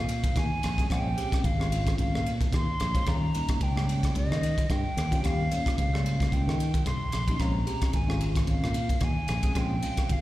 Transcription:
Already playing: fretless electric bass A#2, flute F5
0.09 ride
0.24 muted fretless electric bass stroke, kick, ride
0.36 fretless electric bass D#2, flute G#5, kick, cross-stick, ride
0.63 fretless electric bass A#1, cross-stick, ride
0.78 tine electric piano G#3 C4 C#4 G#4, kick, ride
0.90 fretless electric bass A#1, tine electric piano G#3 C4 C#4 F4, flute G5, kick, cross-stick, ride
1.16 tine electric piano G#3 C4 C#4 G4, ride
1.32 kick, cross-stick, ride
1.44 fretless electric bass G#1, flute F5, kick, ride
1.59 tine electric piano G#3 C4 C#4 F4, cross-stick
1.72 ride
1.87 kick, cross-stick, ride
1.98 fretless electric bass G#1, flute F5, kick, ride
2.14 fretless electric bass A#2, cross-stick
2.26 ride
2.41 muted fretless electric bass stroke, kick, ride
2.53 fretless electric bass D#2, flute C6, kick, cross-stick, ride
2.80 fretless electric bass A#1, cross-stick, ride
2.94 tine electric piano G#3 C4 C#4 F4, kick, ride
3.06 fretless electric bass D#2, tine electric piano G3 A#3 C#4 F4, flute A#5, kick, cross-stick, ride
3.34 tine electric piano G3 A#3 C#4 D#4, ride
3.48 kick, cross-stick, ride
3.61 fretless electric bass C#2, flute G5, kick, ride
3.76 tine electric piano G3 A#3 C#4 G4, cross-stick
3.89 ride
4.03 kick, cross-stick, ride
4.15 fretless electric bass C#2, flute D#5, kick, ride
4.30 fretless electric bass D#3, cross-stick
4.43 ride
4.58 muted fretless electric bass stroke, kick, ride
4.70 fretless electric bass G2, flute G5, kick, cross-stick, ride
4.97 fretless electric bass D#2, cross-stick, ride
5.11 tine electric piano G3 A#3 C#4 F4, kick, ride
5.23 fretless electric bass D#2, tine electric piano G3 A#3 C#4 G4, flute F5, kick, cross-stick, ride
5.51 tine electric piano G3 A#3 C#4 F4, ride
5.66 kick, cross-stick, ride
5.78 fretless electric bass C#2, flute F5, kick, ride
5.93 tine electric piano G3 A#3 C#4 F4, cross-stick
6.06 ride
6.20 kick, cross-stick, ride
6.32 fretless electric bass C#2, flute G5, kick, ride
6.47 fretless electric bass D#3, cross-stick
6.60 ride
6.74 muted fretless electric bass stroke, kick, ride
6.86 fretless electric bass C2, flute C6, kick, cross-stick, ride
7.12 fretless electric bass A#1, cross-stick, ride
7.28 tine electric piano G3 A#3 C#4 D#4, kick, ride
7.39 fretless electric bass A#1, tine electric piano G#3 C4 C#4 F4, flute A#5, kick, cross-stick, ride
7.66 tine electric piano G#3 C4 C#4 G4, ride
7.81 kick, cross-stick, ride
7.93 fretless electric bass G#1, flute G#5, kick, ride
8.07 tine electric piano G#3 C4 C#4 F4, cross-stick
8.21 ride
8.35 kick, cross-stick, ride
8.47 fretless electric bass G#1, flute F5, kick, ride
8.63 fretless electric bass A#2, cross-stick
8.74 ride
8.89 muted fretless electric bass stroke, kick, ride
9.00 fretless electric bass D#2, flute G#5, kick, cross-stick, ride
9.28 fretless electric bass A#1, cross-stick, ride
9.43 tine electric piano G#3 C4 C#4 G#4, kick, ride
9.55 fretless electric bass A#1, tine electric piano G#3 C4 C#4 F4, flute G5, kick, cross-stick, ride
9.82 tine electric piano G#3 C4 C#4 F4, ride
9.97 kick, cross-stick, ride
10.09 fretless electric bass G#1, flute F5, kick, ride

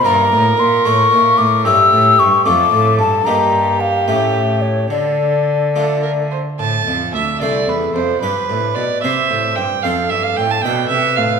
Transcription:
0.04 harpsichord G2 A#3 E4 D5, cello G2, violin A#4, flute A#5
0.32 harpsichord A2, cello A2
0.58 harpsichord A#2, cello A#2, flute C6
0.85 harpsichord A2 A3 E4 C#5, cello A2, flute C#6
1.11 harpsichord A#2, cello A#2
1.38 harpsichord A2, cello A2, flute D6
1.64 harpsichord G2 A3 E4 C#5, cello G2, violin G4, flute E6
1.93 cello A2, harpsichord A2
2.19 harpsichord G2, cello G2, flute C#6
2.45 harpsichord F2 A3 F4 A4, cello F2, violin A4, flute D6
2.71 harpsichord A2, cello A2
2.99 harpsichord G2, cello G2, flute A5
3.25 cello G2, harpsichord G2 A#3 D#4 G4, violin G4, flute A#5
3.80 flute F5
4.07 cello A2, harpsichord A2 A3 C#4 G4, flute E5
4.62 flute C#5
4.90 harpsichord D3, cello D3, violin A4, flute D5
5.75 harpsichord A3 D4 F4, violin A4
6.02 violin A#4
6.31 violin C5
6.59 cello A2, harpsichord A2, violin A5
6.87 cello F2, harpsichord F2
7.14 cello D2, harpsichord D2, violin E5
7.41 cello C2, harpsichord C2 A3 E4 C5, flute A4, violin D5
7.67 cello E2, harpsichord E2, violin B4
7.94 cello F2, harpsichord F2, violin C5
8.21 cello G2, harpsichord G2 D4 G4 B4, flute B4, violin B4
8.49 cello A2, harpsichord A2
8.74 cello B2, harpsichord B2, violin D5
9.02 harpsichord C3 C4 G4 C5, cello C3, flute C5, violin E5
9.30 harpsichord A2, cello A2
9.56 harpsichord G2, cello G2, violin G5
9.82 harpsichord F2 C4 A4 C5, cello F2, flute A4, violin F5
10.10 cello G2, harpsichord G2, violin E5
10.23 violin F5
10.37 cello A2, harpsichord A2, violin G5
10.51 violin A5
10.62 cello B2, harpsichord B2 D4 A4, flute B4, violin G5
10.66 harpsichord B4
10.89 harpsichord C3, cello C3, violin E5
11.16 harpsichord A2, cello A2, violin F5

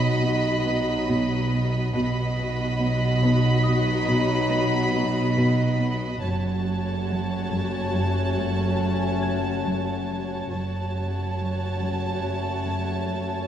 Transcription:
Already playing: double bass section B1, cello section B2, french horn section F#3 D#4, viola section F#4, violin section D#5 B5
0.23 cello section B3
0.66 cello section B3
1.09 cello section B2
1.53 cello section B3
1.94 double bass section B1, cello section B2, french horn section F#3 D#4, viola section F#4, violin section D#5 B5
2.39 cello section B2
2.81 cello section B3
3.23 cello section B2
3.64 cello section B2, celesta D#6
4.09 cello section B2
4.51 cello section B3
4.94 cello section B3
5.37 cello section B2
5.80 cello section B3
6.22 double bass section F#1, cello section F#2, french horn section A3 C#4, viola section F#4, violin section C#5 A5
6.67 cello section F#2
7.09 cello section F#3
7.51 cello section F#2
7.94 cello section F#2
8.37 cello section F#2
8.79 cello section F#3
9.22 cello section F#3, celesta G#6
9.65 cello section F#2
10.09 cello section F#3
10.49 double bass section F#1, cello section F#2, french horn section A3 C#4, viola section F#4, violin section C#5 A5
10.94 cello section F#2
11.37 cello section F#3
11.80 cello section F#2
12.21 cello section F#2
12.65 cello section F#2
13.09 cello section F#3

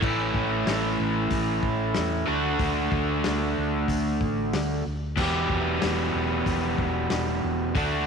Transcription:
0.01 fingered electric bass A1, overdriven electric guitar A2 E3 A3 C#4 E4, kick, crash
0.34 fingered electric bass A1, kick
0.67 fingered electric bass A1, snare, open hi-hat
1.00 fingered electric bass A1
1.30 fingered electric bass A1, kick, open hi-hat
1.63 fingered electric bass A1, kick
1.95 fingered electric bass E2, snare, open hi-hat
2.26 fingered electric bass D2, overdriven electric guitar D3 A3 D4 F#4
2.59 fingered electric bass D2, kick, open hi-hat
2.92 fingered electric bass D2, kick
3.24 fingered electric bass D2, snare, open hi-hat
3.58 fingered electric bass D2
3.88 fingered electric bass D2, kick, open hi-hat
4.21 fingered electric bass A1, kick
4.53 fingered electric bass D2, snare, open hi-hat
4.86 fingered electric bass D2
5.16 fingered electric bass E1, overdriven electric guitar E2 B2 E3 G3 B3 G4, kick, crash
5.50 fingered electric bass E1, kick
5.82 fingered electric bass E1, snare, open hi-hat
6.14 fingered electric bass E1
6.46 fingered electric bass E1, kick, open hi-hat
6.78 fingered electric bass E1, kick
7.10 fingered electric bass E1, snare, open hi-hat
7.44 fingered electric bass E1
7.75 fingered electric bass D2, overdriven electric guitar D3 A3 D4 F#4, kick, open hi-hat

